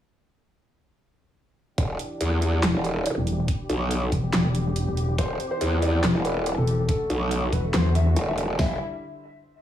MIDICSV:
0, 0, Header, 1, 6, 480
1, 0, Start_track
1, 0, Key_signature, 1, "minor"
1, 0, Tempo, 425532
1, 2009, Time_signature, 4, 2, 24, 8
1, 10850, End_track
2, 0, Start_track
2, 0, Title_t, "Grand piano"
2, 0, Program_c, 0, 0
2, 5848, Note_on_c, 0, 72, 102
2, 6136, Note_off_c, 0, 72, 0
2, 6215, Note_on_c, 0, 72, 96
2, 6498, Note_off_c, 0, 72, 0
2, 6569, Note_on_c, 0, 74, 93
2, 6762, Note_off_c, 0, 74, 0
2, 6808, Note_on_c, 0, 71, 91
2, 7001, Note_off_c, 0, 71, 0
2, 7048, Note_on_c, 0, 71, 97
2, 7336, Note_off_c, 0, 71, 0
2, 7416, Note_on_c, 0, 69, 96
2, 7698, Note_off_c, 0, 69, 0
2, 7769, Note_on_c, 0, 69, 102
2, 8057, Note_off_c, 0, 69, 0
2, 8138, Note_on_c, 0, 69, 94
2, 8419, Note_off_c, 0, 69, 0
2, 8489, Note_on_c, 0, 71, 93
2, 8682, Note_off_c, 0, 71, 0
2, 8729, Note_on_c, 0, 72, 90
2, 8922, Note_off_c, 0, 72, 0
2, 8969, Note_on_c, 0, 76, 96
2, 9257, Note_off_c, 0, 76, 0
2, 9337, Note_on_c, 0, 76, 94
2, 9619, Note_off_c, 0, 76, 0
2, 9688, Note_on_c, 0, 76, 95
2, 9869, Note_off_c, 0, 76, 0
2, 10850, End_track
3, 0, Start_track
3, 0, Title_t, "String section"
3, 0, Program_c, 1, 48
3, 2008, Note_on_c, 1, 67, 87
3, 2009, Note_on_c, 1, 52, 78
3, 2009, Note_on_c, 1, 62, 75
3, 3909, Note_off_c, 1, 52, 0
3, 3910, Note_off_c, 1, 62, 0
3, 3928, Note_on_c, 1, 59, 72
3, 3929, Note_on_c, 1, 50, 81
3, 5829, Note_off_c, 1, 50, 0
3, 5829, Note_off_c, 1, 59, 0
3, 5847, Note_on_c, 1, 52, 79
3, 5847, Note_on_c, 1, 60, 75
3, 7723, Note_off_c, 1, 67, 0
3, 7748, Note_off_c, 1, 60, 0
3, 7749, Note_off_c, 1, 52, 0
3, 7768, Note_on_c, 1, 50, 79
3, 7768, Note_on_c, 1, 57, 73
3, 7768, Note_on_c, 1, 66, 90
3, 9669, Note_off_c, 1, 50, 0
3, 9669, Note_off_c, 1, 57, 0
3, 9669, Note_off_c, 1, 66, 0
3, 9688, Note_on_c, 1, 55, 69
3, 9688, Note_on_c, 1, 64, 80
3, 9689, Note_on_c, 1, 50, 73
3, 9912, Note_off_c, 1, 50, 0
3, 9912, Note_off_c, 1, 55, 0
3, 9912, Note_off_c, 1, 64, 0
3, 10850, End_track
4, 0, Start_track
4, 0, Title_t, "Wobble bass"
4, 0, Program_c, 2, 39
4, 2007, Note_on_c, 2, 28, 98
4, 2230, Note_off_c, 2, 28, 0
4, 2488, Note_on_c, 2, 40, 102
4, 2950, Note_off_c, 2, 40, 0
4, 3095, Note_on_c, 2, 28, 97
4, 3555, Note_off_c, 2, 28, 0
4, 4168, Note_on_c, 2, 35, 97
4, 4630, Note_off_c, 2, 35, 0
4, 5848, Note_on_c, 2, 28, 100
4, 6070, Note_off_c, 2, 28, 0
4, 6328, Note_on_c, 2, 40, 97
4, 6790, Note_off_c, 2, 40, 0
4, 6936, Note_on_c, 2, 28, 99
4, 7395, Note_off_c, 2, 28, 0
4, 8008, Note_on_c, 2, 35, 98
4, 8470, Note_off_c, 2, 35, 0
4, 9208, Note_on_c, 2, 28, 96
4, 9670, Note_off_c, 2, 28, 0
4, 9688, Note_on_c, 2, 28, 99
4, 9912, Note_off_c, 2, 28, 0
4, 10850, End_track
5, 0, Start_track
5, 0, Title_t, "Wobble bass"
5, 0, Program_c, 3, 39
5, 2968, Note_on_c, 3, 28, 99
5, 3075, Note_off_c, 3, 28, 0
5, 3575, Note_on_c, 3, 28, 98
5, 3910, Note_off_c, 3, 28, 0
5, 4648, Note_on_c, 3, 28, 98
5, 4870, Note_off_c, 3, 28, 0
5, 4888, Note_on_c, 3, 28, 101
5, 4995, Note_off_c, 3, 28, 0
5, 5016, Note_on_c, 3, 28, 98
5, 5476, Note_off_c, 3, 28, 0
5, 5495, Note_on_c, 3, 28, 99
5, 5830, Note_off_c, 3, 28, 0
5, 6808, Note_on_c, 3, 28, 102
5, 6915, Note_off_c, 3, 28, 0
5, 7416, Note_on_c, 3, 28, 100
5, 7750, Note_off_c, 3, 28, 0
5, 8489, Note_on_c, 3, 28, 100
5, 8711, Note_off_c, 3, 28, 0
5, 8729, Note_on_c, 3, 40, 100
5, 9191, Note_off_c, 3, 40, 0
5, 10850, End_track
6, 0, Start_track
6, 0, Title_t, "Drums"
6, 2008, Note_on_c, 9, 36, 122
6, 2008, Note_on_c, 9, 42, 85
6, 2121, Note_off_c, 9, 36, 0
6, 2121, Note_off_c, 9, 42, 0
6, 2248, Note_on_c, 9, 42, 57
6, 2361, Note_off_c, 9, 42, 0
6, 2489, Note_on_c, 9, 42, 82
6, 2601, Note_off_c, 9, 42, 0
6, 2729, Note_on_c, 9, 42, 56
6, 2842, Note_off_c, 9, 42, 0
6, 2969, Note_on_c, 9, 38, 122
6, 2969, Note_on_c, 9, 39, 95
6, 2969, Note_on_c, 9, 42, 82
6, 3082, Note_off_c, 9, 38, 0
6, 3082, Note_off_c, 9, 39, 0
6, 3082, Note_off_c, 9, 42, 0
6, 3208, Note_on_c, 9, 42, 56
6, 3321, Note_off_c, 9, 42, 0
6, 3448, Note_on_c, 9, 42, 85
6, 3561, Note_off_c, 9, 42, 0
6, 3688, Note_on_c, 9, 42, 55
6, 3801, Note_off_c, 9, 42, 0
6, 3927, Note_on_c, 9, 42, 81
6, 3928, Note_on_c, 9, 36, 122
6, 4040, Note_off_c, 9, 42, 0
6, 4041, Note_off_c, 9, 36, 0
6, 4168, Note_on_c, 9, 42, 55
6, 4281, Note_off_c, 9, 42, 0
6, 4408, Note_on_c, 9, 42, 81
6, 4521, Note_off_c, 9, 42, 0
6, 4648, Note_on_c, 9, 36, 66
6, 4648, Note_on_c, 9, 42, 53
6, 4761, Note_off_c, 9, 36, 0
6, 4761, Note_off_c, 9, 42, 0
6, 4888, Note_on_c, 9, 38, 125
6, 4888, Note_on_c, 9, 39, 92
6, 4888, Note_on_c, 9, 42, 81
6, 5001, Note_off_c, 9, 38, 0
6, 5001, Note_off_c, 9, 39, 0
6, 5001, Note_off_c, 9, 42, 0
6, 5129, Note_on_c, 9, 42, 56
6, 5241, Note_off_c, 9, 42, 0
6, 5368, Note_on_c, 9, 42, 82
6, 5481, Note_off_c, 9, 42, 0
6, 5609, Note_on_c, 9, 42, 53
6, 5721, Note_off_c, 9, 42, 0
6, 5848, Note_on_c, 9, 36, 127
6, 5848, Note_on_c, 9, 42, 77
6, 5961, Note_off_c, 9, 36, 0
6, 5961, Note_off_c, 9, 42, 0
6, 6089, Note_on_c, 9, 42, 54
6, 6202, Note_off_c, 9, 42, 0
6, 6328, Note_on_c, 9, 42, 79
6, 6441, Note_off_c, 9, 42, 0
6, 6568, Note_on_c, 9, 42, 53
6, 6681, Note_off_c, 9, 42, 0
6, 6809, Note_on_c, 9, 38, 124
6, 6809, Note_on_c, 9, 39, 94
6, 6809, Note_on_c, 9, 42, 80
6, 6921, Note_off_c, 9, 38, 0
6, 6921, Note_off_c, 9, 39, 0
6, 6921, Note_off_c, 9, 42, 0
6, 7049, Note_on_c, 9, 42, 53
6, 7161, Note_off_c, 9, 42, 0
6, 7288, Note_on_c, 9, 42, 81
6, 7401, Note_off_c, 9, 42, 0
6, 7528, Note_on_c, 9, 42, 52
6, 7641, Note_off_c, 9, 42, 0
6, 7768, Note_on_c, 9, 36, 125
6, 7769, Note_on_c, 9, 42, 76
6, 7881, Note_off_c, 9, 36, 0
6, 7881, Note_off_c, 9, 42, 0
6, 8008, Note_on_c, 9, 42, 53
6, 8121, Note_off_c, 9, 42, 0
6, 8248, Note_on_c, 9, 42, 77
6, 8361, Note_off_c, 9, 42, 0
6, 8488, Note_on_c, 9, 36, 64
6, 8489, Note_on_c, 9, 42, 52
6, 8601, Note_off_c, 9, 36, 0
6, 8601, Note_off_c, 9, 42, 0
6, 8729, Note_on_c, 9, 38, 127
6, 8729, Note_on_c, 9, 39, 91
6, 8729, Note_on_c, 9, 42, 76
6, 8842, Note_off_c, 9, 38, 0
6, 8842, Note_off_c, 9, 39, 0
6, 8842, Note_off_c, 9, 42, 0
6, 8970, Note_on_c, 9, 42, 53
6, 9082, Note_off_c, 9, 42, 0
6, 9209, Note_on_c, 9, 42, 80
6, 9322, Note_off_c, 9, 42, 0
6, 9449, Note_on_c, 9, 42, 51
6, 9561, Note_off_c, 9, 42, 0
6, 9689, Note_on_c, 9, 36, 109
6, 9689, Note_on_c, 9, 38, 104
6, 9689, Note_on_c, 9, 46, 91
6, 9801, Note_off_c, 9, 36, 0
6, 9801, Note_off_c, 9, 38, 0
6, 9801, Note_off_c, 9, 46, 0
6, 10850, End_track
0, 0, End_of_file